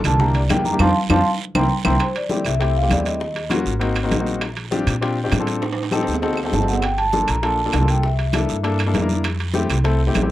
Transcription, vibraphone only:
0.06 0.20 A5 loud
0.21 0.35 A#5 loud
0.35 0.50 D5 medium
0.51 0.65 G5 medium
0.65 0.80 A#5 loud
0.79 0.89 F5 medium
0.79 0.90 A5 medium
0.79 0.89 C6 medium
1.11 1.20 F5 loud
1.11 1.20 A5 medium
1.11 1.20 C6 loud
1.56 1.65 G5 medium
1.56 1.65 A#5 medium
1.56 1.65 C6 medium
1.85 1.95 G5 medium
1.85 1.95 A#5 medium
1.85 1.95 C6 medium
2.02 2.08 C5 medium
2.17 2.47 D5 medium
2.46 2.53 E5 medium
2.61 2.76 E5 loud
2.77 2.92 F5 medium
2.92 3.07 D5 medium
3.06 3.48 D#5 medium
6.53 6.67 A5 medium
6.69 6.84 F#5 medium
6.83 6.90 G5 medium
6.98 7.26 A5 loud
7.28 7.44 A#5 loud
7.43 7.85 A5 medium
7.90 7.96 G5 medium
8.05 8.61 E5 medium

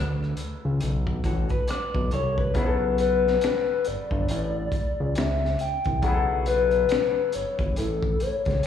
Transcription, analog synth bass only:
0.00 0.35 D2 medium
0.65 0.80 C#2 medium
0.83 1.21 B1 medium
1.25 1.48 A1 medium
1.95 2.11 B1 medium
2.13 2.52 C2 medium
2.56 3.38 B1 loud
3.87 3.97 G1 soft
4.12 4.28 G1 medium
4.31 4.69 A1 loud
5.00 5.15 C#2 medium
5.18 5.56 C#2 medium
5.86 6.02 C2 medium
6.04 6.86 B1 loud
7.35 7.45 G1 soft
7.60 7.76 G1 medium
7.79 8.17 A1 loud
8.47 8.63 C#2 medium

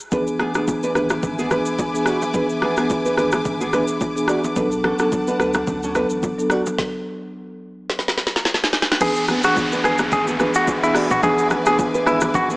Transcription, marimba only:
0.12 0.51 E3 medium
0.12 0.51 B3 medium
0.12 0.52 D4 medium
0.12 0.52 G#4 loud
0.55 0.92 E3 medium
0.55 0.92 B3 medium
0.55 0.92 D4 medium
0.55 0.93 G#4 medium
0.95 1.21 E3 medium
0.95 1.21 B3 medium
0.95 1.21 D4 medium
0.95 1.21 G#4 medium
1.51 1.68 E3 medium
1.51 1.68 B3 medium
1.51 1.68 D4 medium
1.51 1.68 G#4 medium
1.94 2.09 E3 medium
1.94 2.09 B3 medium
1.94 2.09 D4 medium
1.94 2.09 G#4 medium
2.34 2.74 E3 medium
2.34 2.74 B3 medium
2.34 2.74 D4 medium
2.34 2.74 G#4 loud
2.77 3.15 E3 medium
2.77 3.15 B3 medium
2.77 3.15 D4 medium
2.77 3.15 G#4 medium
3.17 3.43 E3 medium
3.17 3.43 B3 medium
3.17 3.43 D4 medium
3.17 3.44 G#4 medium
3.73 3.90 E3 medium
3.73 3.90 B3 medium
3.73 3.90 D4 medium
3.73 3.91 G#4 medium
4.16 4.31 E3 medium
4.16 4.31 B3 medium
4.16 4.31 D4 medium
4.16 4.31 G#4 medium
4.56 4.96 F#3 medium
4.56 4.96 B3 medium
4.56 4.96 D4 medium
4.56 4.96 A4 loud
4.99 5.37 F#3 medium
4.99 5.37 B3 medium
4.99 5.37 D4 medium
4.99 5.37 A4 medium
5.39 5.65 F#3 medium
5.39 5.65 B3 medium
5.39 5.66 D4 medium
5.39 5.66 A4 medium
5.95 6.12 F#3 medium
5.95 6.12 B3 medium
5.95 6.13 D4 medium
5.95 6.13 A4 medium
6.38 6.53 F#3 medium
6.38 6.53 B3 medium
6.38 6.53 D4 medium
6.38 6.53 A4 medium
9.01 9.40 E3 medium
9.01 9.40 B3 medium
9.01 9.40 D4 medium
9.01 9.40 G#4 loud
9.44 9.81 E3 medium
9.44 9.81 B3 medium
9.44 9.81 D4 medium
9.44 9.81 G#4 medium
9.84 10.10 E3 medium
9.84 10.10 B3 medium
9.84 10.10 D4 medium
10.40 10.57 E3 medium
10.40 10.57 B3 medium
10.40 10.57 D4 medium
10.40 10.57 G#4 medium
10.83 10.98 E3 medium
10.83 10.98 B3 medium
10.83 10.98 D4 medium
10.83 10.98 G#4 medium
11.23 11.62 E3 medium
11.23 11.63 B3 medium
11.23 11.63 D4 medium
11.23 11.63 G#4 loud
11.66 12.03 E3 medium
11.66 12.03 B3 medium
11.66 12.04 D4 medium
11.66 12.04 G#4 medium
12.06 12.32 E3 medium
12.06 12.32 B3 medium
12.06 12.32 D4 medium
12.06 12.32 G#4 medium

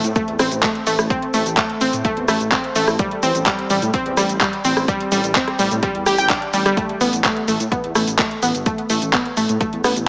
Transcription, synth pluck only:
0.16 0.23 A3 medium
0.39 0.44 C4 medium
0.63 0.66 A3 medium
0.87 0.94 A3 medium
1.10 1.15 C4 medium
1.34 1.37 A3 medium
1.58 1.65 A3 medium
1.81 1.86 C4 medium
2.05 2.08 A3 medium
2.28 2.36 A3 medium
2.52 2.57 C4 medium
2.76 2.79 A3 medium
2.99 3.07 G3 medium
3.23 3.28 C4 medium
3.47 3.49 G3 medium
3.70 3.77 G3 medium
3.94 3.99 C4 medium
4.17 4.20 G3 medium
4.41 4.48 G3 medium
4.65 4.70 C4 medium
4.88 4.91 G3 medium
5.12 5.19 G3 medium
5.35 5.40 C4 medium
5.59 5.62 G3 medium
5.83 5.90 G3 medium
6.06 6.11 G4 medium
6.18 6.25 G5 loud
6.30 6.35 D4 medium
6.54 6.57 G3 medium
6.66 6.70 G3 loud
6.77 6.85 A3 medium
7.01 7.06 B3 medium
7.24 7.27 A3 medium
7.48 7.55 A3 medium
7.72 7.77 B3 medium
7.95 7.98 A3 medium
8.19 8.26 A3 medium
8.43 8.47 B3 medium
8.66 8.69 A3 medium
8.90 8.97 A3 medium
9.13 9.18 B3 medium
9.37 9.40 A3 medium
9.61 9.68 A3 medium
9.84 9.89 B3 medium

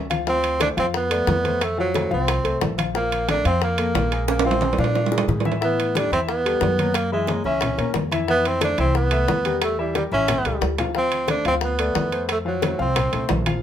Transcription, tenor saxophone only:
0.29 0.59 C4 medium
0.62 0.69 D4 medium
0.79 0.86 C4 medium
0.97 1.65 B3 medium
1.64 1.79 A3 medium
1.80 2.10 F#3 medium
2.14 2.59 C4 medium
2.96 3.27 A#3 medium
3.30 3.45 D4 loud
3.47 3.61 C4 loud
3.64 4.25 A#3 medium
4.30 4.45 A#3 medium
4.46 4.77 C4 medium
4.79 5.25 D4 medium
5.64 5.98 B3 medium
5.96 6.12 D4 loud
6.13 6.20 C4 medium
6.28 6.97 B3 loud
6.95 7.12 A#3 medium
7.13 7.43 G#3 medium
7.45 7.92 C#4 medium
8.30 8.49 B3 loud
8.47 8.63 C4 medium
8.64 8.78 D4 loud
8.80 8.95 C4 medium
8.96 9.58 B3 medium
9.63 9.78 A3 medium
9.80 9.95 G3 medium
9.97 10.04 G3 medium
10.13 10.59 C#4 medium
10.97 11.27 C4 loud
11.31 11.45 D4 medium
11.48 11.55 C4 loud
11.64 12.26 B3 medium
12.31 12.38 A3 medium
12.47 12.78 F#3 medium
12.81 13.27 C4 medium

